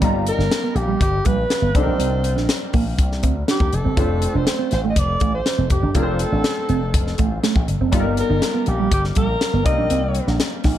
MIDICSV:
0, 0, Header, 1, 7, 480
1, 0, Start_track
1, 0, Tempo, 494234
1, 17, Time_signature, 4, 2, 24, 8
1, 10470, End_track
2, 0, Start_track
2, 0, Title_t, "Alto saxophone"
2, 0, Program_c, 0, 65
2, 277, Note_on_c, 0, 70, 80
2, 741, Note_on_c, 0, 67, 70
2, 755, Note_off_c, 0, 70, 0
2, 979, Note_off_c, 0, 67, 0
2, 991, Note_on_c, 0, 67, 90
2, 1220, Note_on_c, 0, 71, 102
2, 1234, Note_off_c, 0, 67, 0
2, 1703, Note_on_c, 0, 72, 87
2, 1718, Note_off_c, 0, 71, 0
2, 2421, Note_off_c, 0, 72, 0
2, 3403, Note_on_c, 0, 67, 85
2, 3647, Note_on_c, 0, 69, 90
2, 3662, Note_off_c, 0, 67, 0
2, 4247, Note_on_c, 0, 72, 91
2, 4262, Note_off_c, 0, 69, 0
2, 4593, Note_off_c, 0, 72, 0
2, 4603, Note_on_c, 0, 72, 82
2, 4675, Note_off_c, 0, 72, 0
2, 4757, Note_on_c, 0, 75, 68
2, 4841, Note_on_c, 0, 74, 103
2, 4856, Note_off_c, 0, 75, 0
2, 5190, Note_off_c, 0, 74, 0
2, 5194, Note_on_c, 0, 72, 98
2, 5522, Note_off_c, 0, 72, 0
2, 5552, Note_on_c, 0, 67, 77
2, 5769, Note_off_c, 0, 67, 0
2, 5786, Note_on_c, 0, 69, 95
2, 7184, Note_off_c, 0, 69, 0
2, 7964, Note_on_c, 0, 70, 85
2, 8440, Note_on_c, 0, 67, 71
2, 8454, Note_off_c, 0, 70, 0
2, 8669, Note_off_c, 0, 67, 0
2, 8678, Note_on_c, 0, 67, 84
2, 8781, Note_off_c, 0, 67, 0
2, 8911, Note_on_c, 0, 70, 95
2, 9351, Note_off_c, 0, 70, 0
2, 9378, Note_on_c, 0, 75, 96
2, 10059, Note_off_c, 0, 75, 0
2, 10470, End_track
3, 0, Start_track
3, 0, Title_t, "Grand piano"
3, 0, Program_c, 1, 0
3, 0, Control_c, 1, 64, 127
3, 14, Note_on_c, 1, 55, 75
3, 16, Note_on_c, 1, 59, 63
3, 24, Note_on_c, 1, 63, 61
3, 30, Note_on_c, 1, 65, 66
3, 31, Control_c, 1, 64, 0
3, 37, Note_on_c, 1, 82, 75
3, 209, Control_c, 1, 64, 127
3, 1662, Note_off_c, 1, 55, 0
3, 1664, Note_off_c, 1, 59, 0
3, 1668, Note_off_c, 1, 63, 0
3, 1671, Note_off_c, 1, 65, 0
3, 1674, Note_off_c, 1, 82, 0
3, 1695, Note_on_c, 1, 55, 58
3, 1702, Note_on_c, 1, 60, 52
3, 1707, Note_on_c, 1, 62, 58
3, 1711, Control_c, 1, 64, 0
3, 1712, Note_on_c, 1, 63, 54
3, 1721, Note_on_c, 1, 69, 50
3, 1767, Note_off_c, 1, 69, 0
3, 1774, Note_on_c, 1, 70, 67
3, 1899, Control_c, 1, 64, 127
3, 3578, Note_off_c, 1, 55, 0
3, 3582, Note_off_c, 1, 60, 0
3, 3585, Note_off_c, 1, 62, 0
3, 3587, Note_off_c, 1, 63, 0
3, 3619, Note_off_c, 1, 70, 0
3, 3854, Note_on_c, 1, 57, 59
3, 3858, Note_on_c, 1, 60, 47
3, 3868, Note_on_c, 1, 62, 52
3, 3869, Control_c, 1, 64, 0
3, 3870, Note_on_c, 1, 65, 50
3, 3880, Note_on_c, 1, 72, 58
3, 4017, Control_c, 1, 64, 127
3, 5738, Note_off_c, 1, 57, 0
3, 5740, Note_off_c, 1, 60, 0
3, 5745, Note_off_c, 1, 62, 0
3, 5746, Note_off_c, 1, 65, 0
3, 5751, Note_off_c, 1, 72, 0
3, 5776, Note_on_c, 1, 57, 56
3, 5781, Note_on_c, 1, 60, 53
3, 5785, Note_on_c, 1, 62, 55
3, 5791, Note_on_c, 1, 65, 53
3, 5797, Note_on_c, 1, 70, 51
3, 5846, Note_off_c, 1, 70, 0
3, 5853, Note_on_c, 1, 72, 65
3, 7659, Note_off_c, 1, 57, 0
3, 7661, Note_off_c, 1, 60, 0
3, 7663, Note_off_c, 1, 62, 0
3, 7666, Note_off_c, 1, 65, 0
3, 7688, Note_on_c, 1, 55, 74
3, 7695, Note_on_c, 1, 59, 64
3, 7698, Note_off_c, 1, 72, 0
3, 7701, Note_on_c, 1, 63, 66
3, 7703, Note_on_c, 1, 65, 63
3, 7708, Note_on_c, 1, 69, 65
3, 7710, Control_c, 1, 64, 0
3, 7761, Note_off_c, 1, 69, 0
3, 7767, Note_on_c, 1, 70, 75
3, 7868, Control_c, 1, 64, 127
3, 9339, Note_off_c, 1, 55, 0
3, 9343, Note_off_c, 1, 59, 0
3, 9346, Note_off_c, 1, 63, 0
3, 9347, Note_off_c, 1, 65, 0
3, 9362, Note_on_c, 1, 55, 55
3, 9371, Note_off_c, 1, 70, 0
3, 9371, Note_on_c, 1, 60, 54
3, 9375, Note_on_c, 1, 58, 56
3, 9376, Note_on_c, 1, 63, 55
3, 9385, Note_on_c, 1, 70, 63
3, 9390, Control_c, 1, 64, 0
3, 9570, Control_c, 1, 64, 127
3, 10470, Note_off_c, 1, 55, 0
3, 10470, Note_off_c, 1, 58, 0
3, 10470, Note_off_c, 1, 60, 0
3, 10470, Note_off_c, 1, 63, 0
3, 10470, Note_off_c, 1, 70, 0
3, 10470, End_track
4, 0, Start_track
4, 0, Title_t, "Clean electric guitar"
4, 0, Program_c, 2, 27
4, 16, Note_on_c, 2, 55, 68
4, 118, Note_off_c, 2, 55, 0
4, 375, Note_on_c, 2, 63, 62
4, 477, Note_off_c, 2, 63, 0
4, 615, Note_on_c, 2, 59, 68
4, 717, Note_off_c, 2, 59, 0
4, 854, Note_on_c, 2, 55, 67
4, 957, Note_off_c, 2, 55, 0
4, 1215, Note_on_c, 2, 55, 75
4, 1317, Note_off_c, 2, 55, 0
4, 1574, Note_on_c, 2, 59, 72
4, 1677, Note_off_c, 2, 59, 0
4, 1813, Note_on_c, 2, 62, 71
4, 1917, Note_off_c, 2, 62, 0
4, 1933, Note_on_c, 2, 60, 70
4, 2037, Note_off_c, 2, 60, 0
4, 2295, Note_on_c, 2, 62, 59
4, 2398, Note_off_c, 2, 62, 0
4, 2656, Note_on_c, 2, 58, 82
4, 2758, Note_off_c, 2, 58, 0
4, 3138, Note_on_c, 2, 60, 63
4, 3239, Note_off_c, 2, 60, 0
4, 3380, Note_on_c, 2, 62, 74
4, 3481, Note_off_c, 2, 62, 0
4, 3738, Note_on_c, 2, 60, 60
4, 3839, Note_off_c, 2, 60, 0
4, 3858, Note_on_c, 2, 65, 77
4, 3959, Note_off_c, 2, 65, 0
4, 4216, Note_on_c, 2, 62, 58
4, 4318, Note_off_c, 2, 62, 0
4, 4456, Note_on_c, 2, 60, 66
4, 4558, Note_off_c, 2, 60, 0
4, 4705, Note_on_c, 2, 57, 62
4, 4803, Note_off_c, 2, 57, 0
4, 5060, Note_on_c, 2, 57, 79
4, 5160, Note_off_c, 2, 57, 0
4, 5420, Note_on_c, 2, 60, 71
4, 5520, Note_off_c, 2, 60, 0
4, 5661, Note_on_c, 2, 62, 74
4, 5761, Note_off_c, 2, 62, 0
4, 5778, Note_on_c, 2, 65, 71
4, 5879, Note_off_c, 2, 65, 0
4, 6141, Note_on_c, 2, 62, 66
4, 6241, Note_off_c, 2, 62, 0
4, 6498, Note_on_c, 2, 60, 86
4, 6599, Note_off_c, 2, 60, 0
4, 6977, Note_on_c, 2, 57, 69
4, 7079, Note_off_c, 2, 57, 0
4, 7219, Note_on_c, 2, 57, 75
4, 7320, Note_off_c, 2, 57, 0
4, 7586, Note_on_c, 2, 60, 73
4, 7684, Note_off_c, 2, 60, 0
4, 7703, Note_on_c, 2, 55, 77
4, 7802, Note_off_c, 2, 55, 0
4, 8057, Note_on_c, 2, 63, 67
4, 8159, Note_off_c, 2, 63, 0
4, 8295, Note_on_c, 2, 59, 64
4, 8398, Note_off_c, 2, 59, 0
4, 8541, Note_on_c, 2, 55, 69
4, 8641, Note_off_c, 2, 55, 0
4, 8897, Note_on_c, 2, 55, 76
4, 8998, Note_off_c, 2, 55, 0
4, 9258, Note_on_c, 2, 59, 73
4, 9359, Note_off_c, 2, 59, 0
4, 9496, Note_on_c, 2, 62, 75
4, 9598, Note_off_c, 2, 62, 0
4, 9621, Note_on_c, 2, 60, 66
4, 9721, Note_off_c, 2, 60, 0
4, 9983, Note_on_c, 2, 62, 60
4, 10082, Note_off_c, 2, 62, 0
4, 10341, Note_on_c, 2, 63, 81
4, 10440, Note_off_c, 2, 63, 0
4, 10470, End_track
5, 0, Start_track
5, 0, Title_t, "Slap bass"
5, 0, Program_c, 3, 36
5, 18, Note_on_c, 3, 31, 84
5, 293, Note_off_c, 3, 31, 0
5, 371, Note_on_c, 3, 31, 77
5, 465, Note_off_c, 3, 31, 0
5, 731, Note_on_c, 3, 34, 81
5, 917, Note_off_c, 3, 34, 0
5, 980, Note_on_c, 3, 31, 74
5, 1163, Note_off_c, 3, 31, 0
5, 1221, Note_on_c, 3, 34, 85
5, 1403, Note_off_c, 3, 34, 0
5, 1573, Note_on_c, 3, 31, 71
5, 1667, Note_off_c, 3, 31, 0
5, 1699, Note_on_c, 3, 36, 98
5, 1790, Note_off_c, 3, 36, 0
5, 1813, Note_on_c, 3, 34, 67
5, 1906, Note_off_c, 3, 34, 0
5, 1928, Note_on_c, 3, 36, 81
5, 2292, Note_off_c, 3, 36, 0
5, 2292, Note_on_c, 3, 34, 81
5, 2386, Note_off_c, 3, 34, 0
5, 2658, Note_on_c, 3, 34, 84
5, 2841, Note_off_c, 3, 34, 0
5, 2900, Note_on_c, 3, 36, 81
5, 3143, Note_off_c, 3, 36, 0
5, 3143, Note_on_c, 3, 38, 75
5, 3325, Note_off_c, 3, 38, 0
5, 3499, Note_on_c, 3, 39, 89
5, 3591, Note_off_c, 3, 39, 0
5, 3620, Note_on_c, 3, 29, 81
5, 3711, Note_off_c, 3, 29, 0
5, 3744, Note_on_c, 3, 31, 75
5, 3834, Note_off_c, 3, 31, 0
5, 3857, Note_on_c, 3, 29, 92
5, 4133, Note_off_c, 3, 29, 0
5, 4223, Note_on_c, 3, 29, 85
5, 4313, Note_off_c, 3, 29, 0
5, 4588, Note_on_c, 3, 33, 86
5, 4768, Note_off_c, 3, 33, 0
5, 4819, Note_on_c, 3, 29, 70
5, 5002, Note_off_c, 3, 29, 0
5, 5062, Note_on_c, 3, 33, 89
5, 5244, Note_off_c, 3, 33, 0
5, 5422, Note_on_c, 3, 29, 76
5, 5512, Note_off_c, 3, 29, 0
5, 5538, Note_on_c, 3, 29, 94
5, 5630, Note_off_c, 3, 29, 0
5, 5658, Note_on_c, 3, 31, 72
5, 5750, Note_off_c, 3, 31, 0
5, 5780, Note_on_c, 3, 29, 93
5, 6054, Note_off_c, 3, 29, 0
5, 6140, Note_on_c, 3, 33, 79
5, 6231, Note_off_c, 3, 33, 0
5, 6499, Note_on_c, 3, 29, 79
5, 6682, Note_off_c, 3, 29, 0
5, 6740, Note_on_c, 3, 29, 72
5, 6923, Note_off_c, 3, 29, 0
5, 6983, Note_on_c, 3, 33, 87
5, 7165, Note_off_c, 3, 33, 0
5, 7339, Note_on_c, 3, 34, 68
5, 7430, Note_off_c, 3, 34, 0
5, 7462, Note_on_c, 3, 31, 96
5, 7553, Note_off_c, 3, 31, 0
5, 7581, Note_on_c, 3, 29, 70
5, 7699, Note_off_c, 3, 29, 0
5, 7699, Note_on_c, 3, 31, 89
5, 7974, Note_off_c, 3, 31, 0
5, 8062, Note_on_c, 3, 31, 76
5, 8152, Note_off_c, 3, 31, 0
5, 8425, Note_on_c, 3, 34, 83
5, 8606, Note_off_c, 3, 34, 0
5, 8658, Note_on_c, 3, 31, 88
5, 8841, Note_off_c, 3, 31, 0
5, 8900, Note_on_c, 3, 34, 80
5, 9083, Note_off_c, 3, 34, 0
5, 9259, Note_on_c, 3, 31, 77
5, 9350, Note_off_c, 3, 31, 0
5, 9378, Note_on_c, 3, 36, 83
5, 9502, Note_off_c, 3, 36, 0
5, 9502, Note_on_c, 3, 34, 73
5, 9592, Note_off_c, 3, 34, 0
5, 9617, Note_on_c, 3, 36, 84
5, 9892, Note_off_c, 3, 36, 0
5, 9979, Note_on_c, 3, 34, 76
5, 10070, Note_off_c, 3, 34, 0
5, 10337, Note_on_c, 3, 34, 84
5, 10470, Note_off_c, 3, 34, 0
5, 10470, End_track
6, 0, Start_track
6, 0, Title_t, "Muted clean electric guitar strokes"
6, 258, Note_on_c, 9, 29, 38
6, 355, Note_off_c, 9, 29, 0
6, 735, Note_on_c, 9, 29, 44
6, 832, Note_off_c, 9, 29, 0
6, 1694, Note_on_c, 9, 29, 44
6, 1791, Note_off_c, 9, 29, 0
6, 2172, Note_on_c, 9, 29, 39
6, 2269, Note_off_c, 9, 29, 0
6, 3622, Note_on_c, 9, 29, 40
6, 3719, Note_off_c, 9, 29, 0
6, 4103, Note_on_c, 9, 29, 43
6, 4200, Note_off_c, 9, 29, 0
6, 4580, Note_on_c, 9, 29, 39
6, 4677, Note_off_c, 9, 29, 0
6, 5541, Note_on_c, 9, 29, 42
6, 5638, Note_off_c, 9, 29, 0
6, 6019, Note_on_c, 9, 29, 41
6, 6117, Note_off_c, 9, 29, 0
6, 7457, Note_on_c, 9, 29, 43
6, 7555, Note_off_c, 9, 29, 0
6, 7944, Note_on_c, 9, 29, 41
6, 8041, Note_off_c, 9, 29, 0
6, 8413, Note_on_c, 9, 29, 46
6, 8510, Note_off_c, 9, 29, 0
6, 9862, Note_on_c, 9, 29, 41
6, 9959, Note_off_c, 9, 29, 0
6, 10470, End_track
7, 0, Start_track
7, 0, Title_t, "Drums"
7, 18, Note_on_c, 9, 36, 97
7, 19, Note_on_c, 9, 42, 72
7, 115, Note_off_c, 9, 36, 0
7, 116, Note_off_c, 9, 42, 0
7, 258, Note_on_c, 9, 42, 66
7, 355, Note_off_c, 9, 42, 0
7, 385, Note_on_c, 9, 38, 33
7, 482, Note_off_c, 9, 38, 0
7, 500, Note_on_c, 9, 38, 109
7, 501, Note_on_c, 9, 42, 75
7, 597, Note_off_c, 9, 38, 0
7, 598, Note_off_c, 9, 42, 0
7, 736, Note_on_c, 9, 42, 48
7, 833, Note_off_c, 9, 42, 0
7, 978, Note_on_c, 9, 36, 91
7, 980, Note_on_c, 9, 42, 92
7, 1076, Note_off_c, 9, 36, 0
7, 1077, Note_off_c, 9, 42, 0
7, 1214, Note_on_c, 9, 42, 60
7, 1222, Note_on_c, 9, 36, 86
7, 1311, Note_off_c, 9, 42, 0
7, 1319, Note_off_c, 9, 36, 0
7, 1460, Note_on_c, 9, 38, 85
7, 1461, Note_on_c, 9, 42, 78
7, 1557, Note_off_c, 9, 38, 0
7, 1558, Note_off_c, 9, 42, 0
7, 1698, Note_on_c, 9, 42, 65
7, 1699, Note_on_c, 9, 36, 99
7, 1796, Note_off_c, 9, 36, 0
7, 1796, Note_off_c, 9, 42, 0
7, 1940, Note_on_c, 9, 42, 70
7, 2037, Note_off_c, 9, 42, 0
7, 2176, Note_on_c, 9, 42, 69
7, 2273, Note_off_c, 9, 42, 0
7, 2305, Note_on_c, 9, 38, 30
7, 2402, Note_off_c, 9, 38, 0
7, 2417, Note_on_c, 9, 38, 101
7, 2418, Note_on_c, 9, 42, 76
7, 2514, Note_off_c, 9, 38, 0
7, 2516, Note_off_c, 9, 42, 0
7, 2654, Note_on_c, 9, 46, 48
7, 2659, Note_on_c, 9, 36, 71
7, 2752, Note_off_c, 9, 46, 0
7, 2756, Note_off_c, 9, 36, 0
7, 2899, Note_on_c, 9, 36, 87
7, 2900, Note_on_c, 9, 42, 85
7, 2997, Note_off_c, 9, 36, 0
7, 2997, Note_off_c, 9, 42, 0
7, 3029, Note_on_c, 9, 38, 27
7, 3126, Note_off_c, 9, 38, 0
7, 3135, Note_on_c, 9, 42, 64
7, 3143, Note_on_c, 9, 36, 83
7, 3232, Note_off_c, 9, 42, 0
7, 3240, Note_off_c, 9, 36, 0
7, 3381, Note_on_c, 9, 38, 91
7, 3382, Note_on_c, 9, 42, 74
7, 3478, Note_off_c, 9, 38, 0
7, 3480, Note_off_c, 9, 42, 0
7, 3498, Note_on_c, 9, 36, 84
7, 3595, Note_off_c, 9, 36, 0
7, 3619, Note_on_c, 9, 42, 61
7, 3716, Note_off_c, 9, 42, 0
7, 3858, Note_on_c, 9, 36, 100
7, 3858, Note_on_c, 9, 42, 82
7, 3955, Note_off_c, 9, 36, 0
7, 3955, Note_off_c, 9, 42, 0
7, 4097, Note_on_c, 9, 42, 65
7, 4194, Note_off_c, 9, 42, 0
7, 4338, Note_on_c, 9, 38, 97
7, 4340, Note_on_c, 9, 42, 75
7, 4436, Note_off_c, 9, 38, 0
7, 4437, Note_off_c, 9, 42, 0
7, 4574, Note_on_c, 9, 42, 53
7, 4579, Note_on_c, 9, 38, 31
7, 4671, Note_off_c, 9, 42, 0
7, 4676, Note_off_c, 9, 38, 0
7, 4819, Note_on_c, 9, 36, 89
7, 4819, Note_on_c, 9, 42, 93
7, 4916, Note_off_c, 9, 36, 0
7, 4916, Note_off_c, 9, 42, 0
7, 5051, Note_on_c, 9, 42, 64
7, 5062, Note_on_c, 9, 36, 83
7, 5148, Note_off_c, 9, 42, 0
7, 5159, Note_off_c, 9, 36, 0
7, 5301, Note_on_c, 9, 38, 84
7, 5302, Note_on_c, 9, 42, 79
7, 5398, Note_off_c, 9, 38, 0
7, 5399, Note_off_c, 9, 42, 0
7, 5535, Note_on_c, 9, 42, 61
7, 5540, Note_on_c, 9, 36, 79
7, 5632, Note_off_c, 9, 42, 0
7, 5637, Note_off_c, 9, 36, 0
7, 5775, Note_on_c, 9, 42, 77
7, 5779, Note_on_c, 9, 36, 100
7, 5872, Note_off_c, 9, 42, 0
7, 5876, Note_off_c, 9, 36, 0
7, 6014, Note_on_c, 9, 42, 69
7, 6111, Note_off_c, 9, 42, 0
7, 6257, Note_on_c, 9, 38, 109
7, 6258, Note_on_c, 9, 42, 72
7, 6354, Note_off_c, 9, 38, 0
7, 6355, Note_off_c, 9, 42, 0
7, 6495, Note_on_c, 9, 42, 52
7, 6592, Note_off_c, 9, 42, 0
7, 6740, Note_on_c, 9, 36, 99
7, 6740, Note_on_c, 9, 42, 97
7, 6837, Note_off_c, 9, 36, 0
7, 6837, Note_off_c, 9, 42, 0
7, 6866, Note_on_c, 9, 38, 27
7, 6963, Note_off_c, 9, 38, 0
7, 6974, Note_on_c, 9, 42, 66
7, 6984, Note_on_c, 9, 36, 84
7, 7071, Note_off_c, 9, 42, 0
7, 7081, Note_off_c, 9, 36, 0
7, 7221, Note_on_c, 9, 38, 85
7, 7223, Note_on_c, 9, 42, 78
7, 7318, Note_off_c, 9, 38, 0
7, 7320, Note_off_c, 9, 42, 0
7, 7339, Note_on_c, 9, 36, 83
7, 7436, Note_off_c, 9, 36, 0
7, 7461, Note_on_c, 9, 42, 61
7, 7558, Note_off_c, 9, 42, 0
7, 7696, Note_on_c, 9, 42, 84
7, 7699, Note_on_c, 9, 36, 86
7, 7793, Note_off_c, 9, 42, 0
7, 7796, Note_off_c, 9, 36, 0
7, 7937, Note_on_c, 9, 42, 65
7, 8034, Note_off_c, 9, 42, 0
7, 8177, Note_on_c, 9, 38, 104
7, 8178, Note_on_c, 9, 42, 73
7, 8274, Note_off_c, 9, 38, 0
7, 8275, Note_off_c, 9, 42, 0
7, 8412, Note_on_c, 9, 42, 53
7, 8509, Note_off_c, 9, 42, 0
7, 8658, Note_on_c, 9, 36, 93
7, 8659, Note_on_c, 9, 42, 96
7, 8756, Note_off_c, 9, 36, 0
7, 8756, Note_off_c, 9, 42, 0
7, 8782, Note_on_c, 9, 38, 28
7, 8879, Note_off_c, 9, 38, 0
7, 8889, Note_on_c, 9, 42, 68
7, 8901, Note_on_c, 9, 36, 87
7, 8986, Note_off_c, 9, 42, 0
7, 8998, Note_off_c, 9, 36, 0
7, 9139, Note_on_c, 9, 38, 91
7, 9141, Note_on_c, 9, 42, 76
7, 9236, Note_off_c, 9, 38, 0
7, 9238, Note_off_c, 9, 42, 0
7, 9378, Note_on_c, 9, 42, 61
7, 9379, Note_on_c, 9, 36, 93
7, 9476, Note_off_c, 9, 36, 0
7, 9476, Note_off_c, 9, 42, 0
7, 9615, Note_on_c, 9, 42, 77
7, 9712, Note_off_c, 9, 42, 0
7, 9853, Note_on_c, 9, 42, 65
7, 9951, Note_off_c, 9, 42, 0
7, 9978, Note_on_c, 9, 38, 33
7, 10075, Note_off_c, 9, 38, 0
7, 10098, Note_on_c, 9, 38, 100
7, 10099, Note_on_c, 9, 42, 72
7, 10195, Note_off_c, 9, 38, 0
7, 10196, Note_off_c, 9, 42, 0
7, 10330, Note_on_c, 9, 46, 49
7, 10335, Note_on_c, 9, 38, 30
7, 10337, Note_on_c, 9, 36, 65
7, 10427, Note_off_c, 9, 46, 0
7, 10432, Note_off_c, 9, 38, 0
7, 10434, Note_off_c, 9, 36, 0
7, 10470, End_track
0, 0, End_of_file